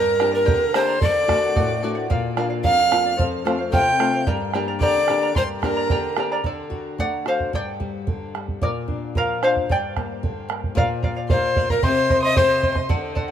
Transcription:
Already playing: G2 G4 A#4 D5 G5 A#5
0.19 A#3 D4 G4 A#4 D5 G5 A#5, bombo rim
0.32 A#4 D5 A#5
0.39 A#5
0.45 D3 G4 A#4 D5 G5 A#5, bombo low
0.74 A#3 D4 G4 A#4 C5 D5 G5 A#5, bombo rim
0.78 C6
0.87 A#4 D5 A#5
1.01 D3 A4 D5 F#5 D6, bombo low
1.28 A3 D4 F#4 A4 D5 F#5, bombo rim, bombo low
1.42 D5 F#5
1.56 A2 A4 D5 F#5, bombo low
1.82 A3 D4 F#4 A4 D5 F#5
1.95 D5 F#5
2.10 A#2 A#4 D5 F5, bombo low
2.37 A#3 D4 F4 A#4 D5 F5, bombo rim
2.50 D5 F5
2.64 F2 A#4 D5 F5 F6, bombo low
2.91 A#3 D4 F4 A#4 D5 F5, bombo rim
3.04 D5 F5
3.17 F2 A4 C5 F5, bombo low
3.45 A3 C4 F4 A4 C5 F5, bombo rim
3.59 C5 F5
3.72 C3 A4 C5 F5 G5 G6, bombo low
3.99 A3 C4 F4 A4 C5 F5, bombo rim
4.13 C5 F5
4.27 G2 G4 A#4 D5 G5 A#5, bombo low
4.54 A#3 D4 G4 A#4 D5 G5 A#5, bombo rim
4.68 A#4 D5 A#5
4.81 D3 G4 A#4 D5 G5 A#5 D6, bombo low
5.08 A#3 D4 G4 A#4 D5 G5 A#5, bombo rim
5.23 A#4 D5 A#5
5.36 G2 G4 A#4 C5 D5 G5 A#5 C6, bombo low
5.62 A#3 D4 G4 A#4 D5 G5 A#5, bombo rim, bombo low
5.77 A#4 D5 A#5
5.90 D3 G4 A#4 D5 G5 A#5, bombo low
6.16 A#3 D4 G4 A#4 D5 G5 A#5, bombo rim
6.32 A#4 D5 A#5
6.44 D3 A4 D5, bombo low
6.70 F#4, bombo low
6.98 A3 D5 F#5, bombo low
7.26 F#4 C5 F5, bombo rim
7.40 bombo low
7.53 G2 D5 G5, bombo low
7.80 G3, bombo low
8.07 D3, bombo low
8.35 G3, bombo rim
8.48 bombo low
8.62 A#2 A#4 D5, bombo low
8.88 D4, bombo low
9.15 F3 A#4 F5, bombo low
9.43 D4 C5 F5, bombo rim
9.56 bombo low
9.69 G2 D5 G5, bombo low
9.97 A#3, bombo rim, bombo low
10.23 D3, bombo low
10.49 A#3, bombo rim
10.64 bombo low
10.75 A#2 A#4 D5 F5, bombo low
11.03 A#4 D5 F5, bombo low
11.17 D5 F5
11.30 A#4 C5 D5 F5 C6, bombo low
11.56 A#4 D5 F5, bombo low
11.70 A#4 D5 F5 A#5, bombo low
11.83 C3 G4 C5 D#5 G5 C6, bombo low
12.10 C5 D#5 G5 C6, bombo low
12.22 C5 D#5 C6 D#6
12.36 G4 C5 D#5 G5 C6, bombo low
12.62 C5 D#5 G5 C6, bombo low
12.75 C5 D#5 C6, bombo low
12.89 D3 A4 D5 F#5, bombo low
13.15 A4 D5 F#5, bombo low
13.28 F#5

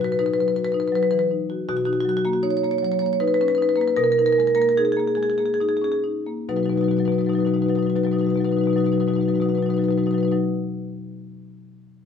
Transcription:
Already playing: B2 F#3
0.01 F#4 B4
0.12 B4
0.19 D#4 B4
0.26 B4
0.34 B4
0.38 F#3 B4
0.48 B4
0.56 F#4 B4
0.65 B4
0.72 D#4 B4
0.80 B4
0.88 B4
0.92 F#3 B4
1.03 B4
1.11 E3 B4
1.19 B4
1.31 D#4
1.50 F#4
1.69 B2 F#4
1.77 F#4
1.85 D#4 F#4
1.93 F#4
2.01 F#4
2.05 F#3
2.09 F#4
2.17 F#4
2.25 A#3 F#4
2.33 F#4
2.43 D#4 C#5
2.50 C#5
2.57 C#5
2.63 A#3 C#5
2.71 C#5
2.78 C#5
2.83 F#3 C#5
2.92 C#5
2.99 A#3 C#5
3.06 C#5
3.13 C#5
3.20 D#4 B4
3.28 B4
3.34 B4
3.41 C#4 B4
3.48 B4
3.55 D#4 B4
3.62 B4
3.69 B4
3.76 A#3 B4
3.81 B4
3.88 B4
3.97 B2 A#4
4.04 A#4
4.12 A#4
4.18 D#4 A#4
4.26 A#4
4.33 A#4
4.38 G#3 A#4
4.47 A#4
4.55 A#3 A#4
4.62 A#4
4.69 A#4
4.77 D#4 G#4
4.85 G#4
4.92 G#4
4.97 A#3 G#4
5.08 G#4
5.15 G#3 G#4
5.23 G#4
5.30 G#4
5.38 A#3 G#4
5.46 G#4
5.54 G#4
5.60 D#4 G#4
5.69 G#4
5.77 G#4
5.82 C#4 G#4
5.92 G#4
6.04 D#4
6.26 A#3
6.49 B2 F#3 D#4 F#4 B4
6.56 B2 F#3 D#4 F#4 B4
6.63 F#3 D#4 F#4 B4
6.69 B2 D#4 F#4 B4
6.76 B2 F#3 F#4 B4
6.81 F#3 D#4 F#4 B4
6.89 B2 F#3 D#4 F#4 B4
6.97 B2 F#3 D#4 F#4 B4
7.05 B2 D#4 F#4 B4
7.10 F#3 F#4 B4
7.14 D#4 F#4
7.18 B2 F#3 D#4 B4
7.25 B2 F#3 F#4 B4
7.29 D#4 F#4
7.33 F#3 D#4 B4
7.39 B2 F#3 F#4 B4
7.45 B2 D#4 F#4 B4
7.52 F#3 D#4 F#4 B4
7.57 B2 F#3
7.62 D#4 F#4 B4
7.66 B2 F#3 F#4 B4
7.70 D#4
7.75 B2 F#3 D#4 F#4 B4
7.82 B2 F#3 F#4 B4
7.87 D#4 F#4 B4
7.96 B2 F#3 D#4 F#4 B4
8.04 B2 F#3 D#4 F#4 B4
8.11 F#3 D#4 F#4 B4
8.16 B2 F#4 B4
8.21 F#3 D#4 B4
8.26 B2 D#4 F#4
8.30 F#3 B4
8.34 B2 D#4 F#4 B4
8.40 F#3 F#4
8.44 B2 D#4 B4
8.49 F#3 D#4 F#4 B4
8.56 B2 F#3 F#4 B4
8.61 D#4 F#4
8.66 B2 F#3 D#4 B4
8.71 F#4 B4
8.76 B2 F#3 D#4 F#4
8.80 B4
8.84 B2 F#3 D#4 F#4 B4
8.92 F#3 D#4 F#4 B4
8.98 B2 F#3 D#4 F#4 B4
9.07 B2 F#3 D#4 F#4 B4
9.14 D#4 F#4 B4
9.19 B2 F#3 F#4 B4
9.25 B2 F#3 D#4 F#4 B4
9.34 F#3 D#4 F#4 B4
9.40 B2 D#4 F#4 B4
9.45 B2 F#3 F#4 B4
9.50 D#4
9.54 F#3 D#4 F#4 B4
9.59 B2 F#3 B4
9.64 D#4 F#4
9.69 B2 F#3 F#4 B4
9.74 D#4 F#4 B4
9.79 B2 F#3 D#4
9.84 F#4 B4
9.89 B2 F#3 D#4 F#4 B4
9.97 B2 F#3 D#4 F#4 B4
10.04 F#3 D#4 F#4 B4
10.08 B2 B4
10.13 F#3 D#4 F#4
10.18 B2 F#4 B4
10.23 F#3 D#4 B4
10.28 B2 D#4 F#4 B4
10.32 F#3

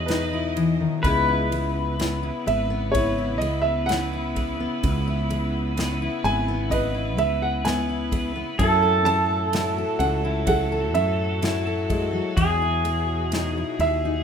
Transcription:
Already playing: E2 B2 F#3 G#3 E4 G#4 B4 D#5
0.06 B2 D#4 B4, snare, ride
0.33 E4
0.57 E3, ride
0.80 D#3
1.02 C#2 C#3 G#3 B3 E4, kick, ride
1.06 B4
1.28 E4
1.52 G#3, ride
1.99 G#2 B3, snare, ride
2.23 E4
2.46 G#1 G#3 E5, ride
2.70 B3
2.92 C#3 E4 C#5, kick, ride
3.18 E4
3.38 C#2 G#3 D#5, ride
3.62 E5
3.86 G#2 B3 F#5, ride
3.91 snare
4.13 E4
4.35 G#3, kick, ride
4.60 B3
4.83 C#2 C#3, kick, ride
5.07 E4
5.30 G#3, ride
5.77 G#2 B3, snare, ride
6.02 E4
6.24 G#1 G#3 G#5, ride
6.48 B3
6.70 C#3 B4 D#5, kick, ride
6.94 E4
7.17 C#2 G#3 E5, ride
7.42 F#5
7.64 G#2 B3 G#5, snare, ride
7.89 E4
8.11 G#3, kick, ride
8.35 B3
8.59 F#2 A2 F#3 C#4 E4 F#4 A4, kick, ride
8.82 A4
9.05 C#4 A5, ride
9.53 C#3 E4, snare, ride
9.78 A4
9.99 C#2 C#4 F#5, ride
10.24 E4
10.47 F#3 A4 F#5, kick, ride
10.72 A4
10.94 F#2 C#4 E5, ride
11.42 C#3 E4, snare, ride
11.67 A4
11.89 G#3, kick, ride
12.13 F#3
12.35 E2 B2 E3 G#4, kick, ride
12.62 E4
12.84 G#3, ride
13.32 B2 D#4, snare, ride
13.57 E4
13.79 D#2 G#3 E5, ride
14.05 D#4

